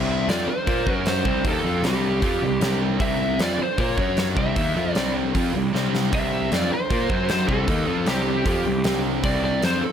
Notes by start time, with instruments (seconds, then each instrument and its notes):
Already playing: picked electric bass C2, overdriven electric guitar C3 G3 C4, lead electric guitar E5
0.28 picked electric bass F2, overdriven electric guitar F3 C4 F4, lead electric guitar D5, snare, open hi-hat
0.48 lead electric guitar C5, muted picked electric bass stroke, muted overdriven electric guitar stroke, muted distorted electric guitar stroke
0.67 picked electric bass A#2, overdriven electric guitar A#3 F4 A#4, kick, open hi-hat
0.86 picked electric bass F#2, overdriven electric guitar F#3 C#4 F#4, kick
0.95 lead electric guitar A#4
1.06 lead electric guitar C5, snare, open hi-hat
1.25 picked electric bass C2, overdriven electric guitar C3 G3 C4, kick
1.44 picked electric bass D#2, overdriven electric guitar D#3 A#3 D#4, lead electric guitar A4, kick, open hi-hat
1.64 picked electric bass F2, overdriven electric guitar F3 C4 F4
1.83 picked electric bass C2, overdriven electric guitar C3 G3 C4, lead electric guitar G4, snare, open hi-hat
2.22 picked electric bass F2, overdriven electric guitar F3 C4 F4, kick, open hi-hat
2.42 picked electric bass C2, overdriven electric guitar C3 G3
2.61 picked electric bass C2, overdriven electric guitar C3 G3 C4, snare, open hi-hat
3.00 picked electric bass C2, overdriven electric guitar C3 G3 C4, lead electric guitar E5, kick, open hi-hat
3.39 picked electric bass F2, overdriven electric guitar F3 C4 F4, lead electric guitar D5, snare, open hi-hat
3.59 muted distorted electric guitar stroke, muted picked electric bass stroke, muted overdriven electric guitar stroke
3.63 lead electric guitar C5
3.78 picked electric bass A#2, overdriven electric guitar A#3 F4 A#4, lead electric guitar C#5, kick, open hi-hat
3.97 picked electric bass F#2, overdriven electric guitar F#3 C#4 F#4, kick
4.17 lead electric guitar C#5, snare, open hi-hat
4.36 picked electric bass C2, overdriven electric guitar C3 G3 C4, lead electric guitar E5, kick
4.56 picked electric bass D#2, overdriven electric guitar D#3 A#3 D#4, kick, open hi-hat
4.76 picked electric bass F2, overdriven electric guitar F3 C4 F4
4.93 picked electric bass C2, overdriven electric guitar C3 G3 C4, lead electric guitar D5, snare, open hi-hat
5.34 picked electric bass F2, overdriven electric guitar F3 C4 F4, kick, open hi-hat
5.53 picked electric bass C2, overdriven electric guitar C3 G3
5.74 picked electric bass C2, overdriven electric guitar C3 G3 C4, snare
5.95 snare
6.12 picked electric bass C2, overdriven electric guitar C3 G3 C4, lead electric guitar E5, kick, open hi-hat
6.52 picked electric bass F2, overdriven electric guitar F3 C4 F4, lead electric guitar D5, snare, open hi-hat
6.71 lead electric guitar C5, muted distorted electric guitar stroke, muted overdriven electric guitar stroke, muted picked electric bass stroke
6.90 picked electric bass A#2, overdriven electric guitar A#3 F4 A#4, kick, open hi-hat
7.10 picked electric bass F#2, overdriven electric guitar F#3 C#4 F#4, kick
7.29 lead electric guitar C5, snare, open hi-hat
7.48 picked electric bass C2, overdriven electric guitar C3 G3 C4, lead electric guitar A4, kick
7.67 picked electric bass D#2, overdriven electric guitar D#3 A#3 D#4, kick, open hi-hat
7.86 picked electric bass F2, overdriven electric guitar F3 C4 F4
8.06 picked electric bass C2, overdriven electric guitar C3 G3 C4, lead electric guitar G4, snare, open hi-hat
8.45 picked electric bass F2, overdriven electric guitar F3 C4 F4, kick, open hi-hat
8.65 picked electric bass C2, overdriven electric guitar C3 G3
8.84 picked electric bass C2, overdriven electric guitar C3 G3 C4, snare, open hi-hat
9.24 picked electric bass C2, overdriven electric guitar C3 G3 C4, lead electric guitar D5, kick, open hi-hat
9.44 lead electric guitar D5
9.62 picked electric bass F2, overdriven electric guitar F3 C4 F4, lead electric guitar C5, snare, open hi-hat
9.82 lead electric guitar A4, muted distorted electric guitar stroke, muted picked electric bass stroke, muted overdriven electric guitar stroke